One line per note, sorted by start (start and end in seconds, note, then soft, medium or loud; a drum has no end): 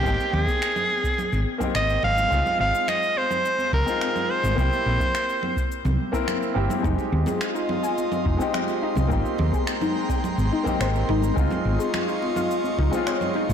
0.00 1.56 A#3 medium
0.00 1.57 C4 medium
0.00 0.35 G4 loud
0.05 0.16 G#1 medium
0.05 1.58 D#4 medium
0.05 1.58 G5 medium
0.05 kick loud
0.05 shaker medium
0.20 shaker soft
0.33 0.44 D#2 loud
0.33 1.48 G#4 medium
0.33 high conga medium
0.33 low conga medium
0.47 kick loud
0.47 shaker medium
0.62 finger snap loud
0.62 shaker medium
0.76 low conga medium
0.76 shaker soft
0.90 high conga medium
1.04 kick loud
1.04 shaker medium
1.18 low conga medium
1.18 shaker medium
1.32 1.43 G#1 medium
1.32 high conga medium
1.32 shaker soft
1.58 2.27 A#3 medium
1.58 2.28 C4 medium
1.58 2.29 D#4 medium
1.58 kick medium
1.58 low conga medium
1.58 shaker medium
1.64 2.29 G4 medium
1.75 1.96 G#1 medium
1.75 2.02 D#5 loud
1.75 finger snap loud
1.75 high conga medium
1.75 shaker medium
1.90 shaker soft
2.03 2.24 G#1 medium
2.03 2.56 F5 loud
2.03 low conga medium
2.17 high conga medium
2.17 low conga medium
2.17 shaker medium
2.29 2.42 C#2 loud
2.29 3.82 G#3 medium
2.29 3.83 C4 medium
2.29 3.84 D#4 medium
2.29 kick loud
2.29 shaker medium
2.34 3.85 F4 medium
2.46 low conga medium
2.46 shaker soft
2.59 2.70 G#1 loud
2.59 2.90 F5 loud
2.59 high conga medium
2.75 shaker medium
2.88 3.19 D#5 loud
2.88 finger snap loud
2.88 low conga medium
2.88 shaker medium
3.03 shaker soft
3.16 3.73 C5 loud
3.16 high conga medium
3.31 low conga medium
3.31 shaker medium
3.45 shaker medium
3.59 high conga medium
3.59 shaker soft
3.73 3.84 C#2 medium
3.73 4.32 A#4 medium
3.73 kick loud
3.73 low conga medium
3.85 4.53 G#3 medium
3.85 4.54 C4 medium
3.85 4.55 D#4 medium
3.85 shaker medium
3.90 4.56 F4 medium
4.00 finger snap loud
4.00 high conga medium
4.00 shaker medium
4.16 low conga medium
4.16 shaker soft
4.30 4.58 C5 medium
4.43 4.54 G#1 medium
4.43 high conga medium
4.43 low conga medium
4.43 shaker medium
4.55 4.68 C2 loud
4.55 6.09 A#3 medium
4.55 6.10 C4 medium
4.55 6.10 E4 medium
4.55 5.67 C5 medium
4.55 kick loud
4.55 low conga medium
4.55 shaker medium
4.60 6.11 G4 medium
4.73 shaker soft
4.86 4.97 A#1 loud
4.86 high conga medium
5.00 kick loud
5.00 low conga medium
5.00 shaker medium
5.15 finger snap loud
5.15 shaker medium
5.29 shaker soft
5.42 high conga medium
5.42 low conga medium
5.57 kick loud
5.57 shaker medium
5.72 shaker soft
5.85 5.96 C2 medium
5.85 high conga loud
5.85 low conga medium
5.85 shaker soft
6.12 6.52 A#3 medium
6.12 6.52 C4 medium
6.12 6.53 E4 medium
6.12 6.53 A#4 medium
6.12 kick medium
6.12 shaker medium
6.27 finger snap medium
6.27 high conga medium
6.27 low conga medium
6.27 shaker medium
6.43 shaker soft
6.54 6.66 G1 medium
6.54 6.80 A#3 medium
6.54 6.80 C4 medium
6.54 6.81 E4 medium
6.54 6.81 G4 medium
6.70 high conga medium
6.70 low conga medium
6.70 shaker medium
6.81 6.95 F1 medium
6.81 8.35 G#3 medium
6.81 8.36 C4 medium
6.81 6.92 D#4 medium
6.81 8.37 D#4 medium
6.81 9.08 F4 medium
6.81 9.08 D#5 medium
6.81 13.54 C6 medium
6.81 kick loud
6.81 low conga medium
6.81 shaker medium
6.86 8.38 G4 medium
6.98 muted conga soft
6.98 shaker soft
7.12 7.23 D#2 loud
7.12 high conga medium
7.26 7.39 G#4 medium
7.26 muted conga medium
7.26 low conga medium
7.26 shaker medium
7.41 finger snap medium
7.41 shaker medium
7.54 7.67 D#4 medium
7.54 shaker soft
7.69 muted conga soft
7.69 high conga medium
7.69 low conga medium
7.83 7.91 G#5 medium
7.83 shaker medium
7.98 muted conga medium
7.98 shaker medium
8.12 high conga medium
8.12 low conga medium
8.12 shaker soft
8.25 8.36 F1 medium
8.25 8.38 D#4 medium
8.25 kick loud
8.37 9.06 G#3 medium
8.37 9.07 C4 medium
8.37 9.07 D#4 medium
8.37 muted conga soft
8.37 shaker medium
8.42 9.08 G4 medium
8.53 8.62 D#5 medium
8.53 finger snap medium
8.53 high conga medium
8.53 low conga medium
8.53 shaker medium
8.68 muted conga medium
8.68 shaker soft
8.82 8.95 D#4 medium
8.95 9.07 C2 medium
8.95 high conga medium
8.95 low conga medium
8.95 shaker medium
9.08 9.21 G#1 loud
9.08 11.35 G#3 medium
9.08 10.61 A#3 medium
9.08 10.62 C4 medium
9.08 9.18 D#4 medium
9.08 10.63 D#4 medium
9.08 11.35 G5 medium
9.08 11.35 A#5 medium
9.08 kick loud
9.08 muted conga medium
9.08 shaker soft
9.13 10.64 G4 medium
9.26 shaker soft
9.38 9.50 D#2 loud
9.38 muted conga medium
9.38 high conga medium
9.38 low conga medium
9.53 9.66 G#4 medium
9.53 kick loud
9.53 shaker medium
9.67 finger snap medium
9.67 shaker medium
9.81 9.94 D#4 medium
9.81 muted conga medium
9.81 low conga medium
9.81 shaker soft
9.95 high conga medium
10.09 10.17 G5 medium
10.09 kick medium
10.09 muted conga medium
10.09 shaker medium
10.24 low conga medium
10.24 shaker soft
10.38 10.49 G#1 medium
10.38 high conga medium
10.38 shaker soft
10.52 10.65 D#4 medium
10.52 muted conga soft
10.63 11.32 A#3 medium
10.63 11.33 C4 medium
10.63 11.34 D#4 medium
10.63 kick medium
10.63 low conga medium
10.63 shaker medium
10.68 11.35 G4 medium
10.80 11.02 G#1 medium
10.80 10.88 C5 medium
10.80 finger snap medium
10.80 muted conga medium
10.80 high conga medium
10.80 shaker soft
10.95 shaker soft
11.09 11.30 G#1 medium
11.09 11.22 D#4 loud
11.09 low conga medium
11.22 muted conga medium
11.22 high conga medium
11.22 low conga medium
11.22 shaker medium
11.34 11.48 C#2 loud
11.34 12.88 G#3 medium
11.34 12.89 C4 medium
11.34 11.45 D#4 medium
11.34 12.90 D#4 medium
11.34 13.54 F4 medium
11.34 13.54 D#5 medium
11.34 13.54 C#6 medium
11.34 kick loud
11.34 shaker medium
11.39 12.90 F4 medium
11.51 muted conga medium
11.51 low conga medium
11.51 shaker soft
11.65 11.76 G#1 loud
11.65 high conga medium
11.79 11.92 G#4 medium
11.79 shaker medium
11.94 finger snap loud
11.94 muted conga medium
11.94 low conga medium
11.94 shaker medium
12.08 12.21 D#4 medium
12.08 shaker soft
12.22 muted conga medium
12.22 high conga medium
12.36 12.44 F5 medium
12.36 low conga medium
12.36 shaker medium
12.51 shaker soft
12.64 muted conga soft
12.64 high conga medium
12.64 shaker soft
12.78 12.89 C#2 medium
12.78 12.91 D#4 medium
12.78 kick medium
12.78 low conga medium
12.90 13.54 G#3 medium
12.90 13.54 C4 medium
12.90 13.54 D#4 medium
12.90 muted conga medium
12.90 shaker medium
12.95 13.54 F4 medium
13.07 13.15 C#5 medium
13.07 finger snap loud
13.07 high conga medium
13.07 shaker soft
13.21 low conga medium
13.21 shaker soft
13.34 13.48 D#4 loud
13.34 muted conga medium
13.49 13.54 G#1 medium
13.49 high conga medium
13.49 low conga medium
13.49 shaker medium